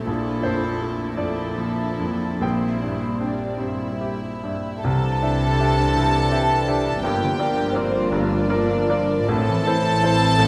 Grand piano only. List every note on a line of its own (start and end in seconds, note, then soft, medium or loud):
0.00 0.11 A3 soft
0.00 0.10 E4 soft
0.00 0.11 A5 medium
0.07 2.38 A#1 soft
0.43 1.03 F2 soft
0.43 1.14 C5 medium
0.82 1.42 A3 soft
1.17 1.83 F2 soft
1.17 2.38 D5 soft
1.58 2.26 F3 soft
1.99 2.42 F2 soft
2.41 4.80 A#1 soft
2.41 4.40 G5 soft
2.82 3.45 G2 soft
3.20 3.84 C4 soft
3.61 4.26 G2 soft
4.01 4.69 G4 soft
4.43 4.84 G2 soft
4.84 5.21 C2 soft
4.84 5.21 C3 soft
5.22 5.56 D4 soft
5.22 5.56 G4 soft
5.22 5.56 E5 soft
5.60 5.92 D4 soft
5.60 5.92 G4 soft
5.60 5.92 E5 soft
5.96 6.31 C2 soft
5.96 6.31 C3 soft
6.32 6.64 D4 soft
6.32 6.64 G4 soft
6.32 6.64 E5 soft
6.67 7.00 D4 soft
6.67 7.00 G4 soft
6.67 7.00 E5 soft
7.04 7.38 G1 soft
7.04 7.39 G2 medium
7.39 7.71 F4 soft
7.39 7.71 A#4 soft
7.39 7.71 D5 soft
7.75 8.08 F4 soft
7.75 8.08 A#4 soft
7.75 8.08 D5 soft
8.11 8.48 G1 soft
8.11 8.48 G2 soft
8.49 8.85 F4 soft
8.49 8.86 A#4 soft
8.49 8.86 D5 soft
8.89 9.25 F4 soft
8.89 9.25 A#4 soft
8.89 9.25 D5 soft
9.28 9.65 A1 soft
9.28 9.65 A2 medium
9.66 9.99 E4 soft
9.66 9.99 A4 soft
9.66 9.99 C5 soft
10.03 10.35 E4 soft
10.03 10.36 A4 soft
10.03 10.36 C5 soft
10.39 10.48 A1 soft
10.39 10.48 A2 soft